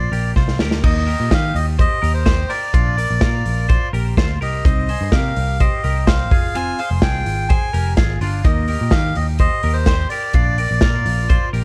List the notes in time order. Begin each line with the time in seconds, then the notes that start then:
Already playing: F4 C5 D5
0.12 A#1 G4 A#4, open hi-hat
0.36 C2 F4 C5, kick, snare
0.48 snare
0.59 D2 G4 A#4, snare
0.71 snare
0.84 D#2 A#3 D#4 D#5, kick, crash
1.07 G4 A#4, open hi-hat
1.20 A#2
1.31 D#3 D#4 G4 F5, kick, snare, ride
1.55 D#2 D#5, open hi-hat
1.79 G4 C5 D#5, kick, hi-hat pedal, ride
2.02 D#2 G4 A#4, open hi-hat
2.14 C5
2.26 G4 C5, kick, snare, hi-hat pedal, ride
2.49 G4 A#4 D5, open hi-hat
2.74 A#1 D4 F4, kick, hi-hat pedal, ride
2.97 A#4 D5, open hi-hat
3.11 A#1
3.21 A#2 F4 A#4, kick, snare, ride
3.46 A#1, open hi-hat
3.69 F4 C5, kick, hi-hat pedal, ride
3.93 A#1 G4 A#4, open hi-hat
4.17 D2 F4 C5, kick, snare, hi-hat pedal, ride
4.41 C2 G4 A#4 D#5, open hi-hat
4.65 C2 C4 D#4, kick, hi-hat pedal, ride
4.89 G#4 C5, open hi-hat
5.01 G2
5.12 C3 G4 A#4 F5, kick, snare, ride
5.36 C2, open hi-hat
5.60 G4 C5 D#5, kick, hi-hat pedal, ride
5.84 C2 G4 A#4, open hi-hat
6.07 G4 C5 F5, kick, snare, hi-hat pedal, ride
6.31 F1 F4 G#4, kick, open hi-hat
6.55 C4 F4 G#5, hi-hat pedal, ride
6.79 G#4 C5 F5, open hi-hat
6.91 F1
7.02 C2 F4 G#4 G5, kick, snare, ride
7.26 G#1, open hi-hat
7.49 G#4 C5 G#5, kick, hi-hat pedal, ride
7.73 F1 G4 A#4, open hi-hat
7.97 G#1 F4 G#4, kick, snare, hi-hat pedal, ride
8.21 G1 D4 F4, open hi-hat
8.44 D#2 A#3 D#4 D#5, kick, hi-hat pedal, ride
8.68 G4 A#4, open hi-hat
8.81 A#2
8.91 D#3 D#4 G4 F5, kick, snare, hi-hat pedal, ride
9.15 D#2 D#5, open hi-hat
9.39 G4 C5 D#5, kick, hi-hat pedal, ride
9.63 D#2 G4 A#4, open hi-hat
9.74 C5
9.86 G4 C5, kick, snare, hi-hat pedal, ride
10.09 G4 A#4 D5, open hi-hat
10.33 A#1 D4 F4, kick, hi-hat pedal, ride
10.58 A#4 D5, open hi-hat
10.71 A#1
10.81 A#2 F4 A#4, kick, snare, ride
11.06 A#1, open hi-hat
11.29 F4 C5, kick, hi-hat pedal, ride
11.53 A#1 G4 A#4, open hi-hat